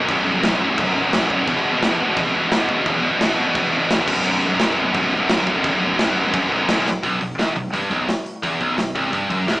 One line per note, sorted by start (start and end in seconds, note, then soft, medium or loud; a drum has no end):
0.01 0.09 F#2 medium
0.08 0.21 B0 loud
0.08 0.16 B1 medium
0.08 0.16 F#2 medium
0.08 kick loud
0.08 crash medium
0.16 0.24 B1 medium
0.16 0.24 F#2 medium
0.24 0.39 B0 medium
0.24 0.31 B1 medium
0.24 0.32 F#2 medium
0.31 0.39 B1 medium
0.31 0.40 F#2 medium
0.39 0.47 B1 medium
0.39 0.47 F#2 medium
0.43 0.56 B0 medium
0.43 snare loud
0.43 crash medium
0.48 0.55 B1 medium
0.48 0.55 F#2 medium
0.55 0.63 B1 medium
0.55 0.62 F#2 medium
0.61 0.73 B0 medium
0.61 0.70 B1 medium
0.61 0.70 F#2 medium
0.70 0.78 B1 medium
0.70 0.78 F#2 medium
0.78 0.90 B0 loud
0.78 0.85 B1 medium
0.78 0.86 F#2 medium
0.78 kick loud
0.78 crash medium
0.86 0.93 B1 medium
0.86 0.93 F#2 medium
0.94 1.09 B0 medium
0.94 1.00 B1 medium
0.94 1.02 F#2 medium
1.00 1.08 B1 medium
1.00 1.09 F#2 medium
1.08 1.16 B1 medium
1.08 1.17 F#2 medium
1.13 1.26 B0 loud
1.13 1.24 B1 medium
1.13 snare loud
1.13 crash medium
1.18 1.24 F#2 medium
1.25 1.33 B1 medium
1.25 1.31 F#2 medium
1.30 1.42 D#1 medium
1.30 1.40 B1 medium
1.30 1.39 F#2 medium
1.30 kick medium
1.40 1.47 B1 medium
1.40 1.48 F#2 medium
1.47 1.60 E1 medium
1.47 1.55 E2 medium
1.47 1.55 B2 medium
1.47 kick loud
1.47 crash medium
1.55 1.63 E2 medium
1.55 1.62 B2 medium
1.63 1.78 E1 medium
1.63 1.71 E2 medium
1.63 1.70 B2 medium
1.72 1.77 E2 medium
1.72 1.78 B2 medium
1.78 1.86 E2 medium
1.78 1.85 B2 medium
1.82 1.94 E1 loud
1.82 1.93 E2 medium
1.82 1.93 B2 medium
1.82 snare loud
1.82 crash medium
1.93 2.01 E2 medium
1.93 2.01 B2 medium
2.00 2.12 E1 medium
2.00 2.08 E2 medium
2.00 2.09 B2 medium
2.08 2.16 E2 medium
2.08 2.16 B2 medium
2.16 2.29 D#1 loud
2.16 2.24 E2 medium
2.16 2.24 B2 medium
2.16 kick loud
2.16 crash medium
2.25 2.32 E2 medium
2.25 2.32 B2 medium
2.32 2.47 E1 medium
2.32 2.39 E2 medium
2.32 2.38 B2 medium
2.39 2.47 E2 medium
2.39 2.47 B2 medium
2.47 2.54 E2 medium
2.47 2.56 B2 medium
2.52 2.64 E1 loud
2.52 2.62 E2 medium
2.52 snare loud
2.52 crash medium
2.56 2.63 B2 medium
2.63 2.69 E2 medium
2.63 2.70 B2 medium
2.69 2.81 E1 medium
2.69 2.77 E2 medium
2.69 2.78 B2 medium
2.69 kick medium
2.78 2.86 E2 medium
2.78 2.87 B2 medium
2.86 2.99 E1 medium
2.86 2.94 E2 medium
2.86 2.94 B2 loud
2.86 kick loud
2.86 crash medium
2.94 3.00 E2 medium
2.94 3.01 B2 medium
3.01 3.16 E1 medium
3.01 3.08 E2 medium
3.01 3.09 B2 medium
3.10 3.17 E2 medium
3.10 3.18 B2 medium
3.17 3.24 E2 medium
3.17 3.25 B2 medium
3.17 snare loud
3.17 crash medium
3.21 3.33 E1 loud
3.21 3.32 E2 medium
3.25 3.33 B2 medium
3.33 3.39 E2 medium
3.33 3.40 B2 loud
3.37 3.50 E1 medium
3.37 3.47 E2 medium
3.37 3.47 B2 medium
3.47 3.54 E2 medium
3.47 3.55 B2 medium
3.55 3.68 E1 loud
3.55 3.62 E2 medium
3.55 3.62 B2 medium
3.55 kick loud
3.55 crash medium
3.62 3.70 E2 medium
3.62 3.70 B2 medium
3.70 3.85 E1 medium
3.70 3.78 E2 medium
3.70 3.78 B2 medium
3.78 3.85 E2 medium
3.78 3.85 B2 medium
3.86 3.92 E2 medium
3.86 3.93 B2 medium
3.90 4.03 E1 medium
3.90 4.00 E2 medium
3.90 snare loud
3.90 crash medium
3.94 4.00 B2 medium
4.00 4.07 E2 medium
4.00 4.08 B2 medium
4.08 4.20 B0 loud
4.08 4.14 B1 medium
4.08 4.15 F#2 medium
4.08 kick loud
4.08 crash loud
4.15 4.22 B1 medium
4.15 4.23 F#2 medium
4.23 4.38 B0 loud
4.23 4.30 B1 medium
4.23 4.31 F#2 medium
4.23 crash medium
4.31 4.38 B1 medium
4.31 4.38 F#2 medium
4.38 4.46 B1 medium
4.38 4.46 F#2 medium
4.43 4.55 B0 medium
4.43 4.54 B1 medium
4.43 4.53 F#2 medium
4.54 4.61 B1 medium
4.54 4.62 F#2 medium
4.59 4.73 B0 loud
4.59 4.69 B1 medium
4.59 4.69 F#2 medium
4.59 snare loud
4.59 crash medium
4.69 4.77 B1 medium
4.69 4.77 F#2 medium
4.77 4.90 B0 medium
4.77 4.84 B1 medium
4.77 4.84 F#2 medium
4.84 4.92 B1 medium
4.84 4.93 F#2 medium
4.92 5.07 A1 loud
4.92 5.00 B1 medium
4.92 5.00 F#2 medium
4.92 kick loud
4.92 crash medium
5.00 5.06 B1 medium
5.00 5.07 F#2 medium
5.07 5.15 B1 medium
5.07 5.15 F#2 medium
5.13 5.25 B0 loud
5.13 5.22 B1 medium
5.13 5.24 F#2 medium
5.23 5.30 B1 medium
5.23 5.32 F#2 medium
5.29 5.42 B0 loud
5.29 5.38 B1 medium
5.29 5.38 F#2 medium
5.29 snare loud
5.29 crash medium
5.39 5.46 B1 medium
5.39 5.46 F#2 medium
5.47 5.59 B0 medium
5.47 5.55 B1 medium
5.47 5.55 F#2 medium
5.47 kick medium
5.55 5.62 B1 medium
5.55 5.62 F#2 medium
5.62 5.76 B0 loud
5.62 5.70 B1 medium
5.62 5.70 F#2 medium
5.62 kick loud
5.62 crash medium
5.71 5.77 B1 medium
5.71 5.78 F#2 medium
5.77 5.85 B1 medium
5.77 5.86 F#2 medium
5.83 5.95 B0 medium
5.83 5.93 B1 medium
5.83 5.94 F#2 medium
5.94 6.01 B1 medium
5.94 6.01 F#2 medium
5.99 6.12 B0 loud
5.99 6.08 B1 medium
5.99 6.09 F#2 medium
5.99 snare loud
5.99 crash medium
6.09 6.16 B1 medium
6.09 6.17 F#2 medium
6.16 6.29 B0 medium
6.16 6.24 B1 medium
6.16 6.24 F#2 medium
6.24 6.32 B1 medium
6.24 6.32 F#2 medium
6.32 6.46 B0 loud
6.32 6.40 B1 medium
6.32 6.40 F#2 medium
6.32 kick loud
6.32 crash medium
6.40 6.48 B1 medium
6.40 6.48 F#2 medium
6.48 6.64 B0 loud
6.48 6.55 B1 medium
6.48 6.55 F#2 medium
6.55 6.63 B1 medium
6.55 6.63 F#2 medium
6.63 6.70 B1 medium
6.63 6.71 F#2 medium
6.68 6.81 B0 loud
6.68 6.78 B1 medium
6.68 6.79 F#2 medium
6.68 snare loud
6.68 crash medium
6.79 6.86 B1 medium
6.79 6.87 F#2 medium
6.86 6.98 D#1 medium
6.86 snare medium
7.03 7.20 B0 medium
7.03 7.19 B1 medium
7.03 kick loud
7.03 open hi-hat medium
7.20 7.37 B0 medium
7.20 7.34 B1 medium
7.20 kick medium
7.20 open hi-hat soft
7.38 7.55 D#1 medium
7.38 7.55 D#2 medium
7.38 snare loud
7.38 open hi-hat medium
7.55 7.72 B0 medium
7.55 7.69 B1 medium
7.55 kick medium
7.55 open hi-hat soft
7.73 7.90 G1 medium
7.73 7.90 G2 medium
7.73 kick medium
7.73 open hi-hat medium
7.91 8.07 B0 medium
7.91 8.08 B1 medium
7.91 kick medium
7.91 open hi-hat soft
8.09 snare loud
8.09 open hi-hat medium
8.26 open hi-hat soft
8.43 8.59 E1 medium
8.43 8.60 E2 medium
8.43 kick medium
8.43 open hi-hat medium
8.61 8.77 B0 medium
8.61 8.76 B1 loud
8.61 kick medium
8.61 open hi-hat soft
8.77 8.95 B0 medium
8.77 8.92 B1 medium
8.77 snare medium
8.77 open hi-hat medium
8.95 9.12 C1 medium
8.95 9.11 C2 medium
8.95 kick medium
8.95 open hi-hat soft
9.12 9.29 G1 medium
9.12 9.29 G2 medium
9.12 kick loud
9.12 open hi-hat medium
9.30 9.47 F#1 medium
9.30 9.47 F#2 medium
9.30 kick loud
9.30 open hi-hat soft
9.48 9.60 C1 medium
9.48 9.60 C2 medium
9.48 snare loud
9.48 open hi-hat medium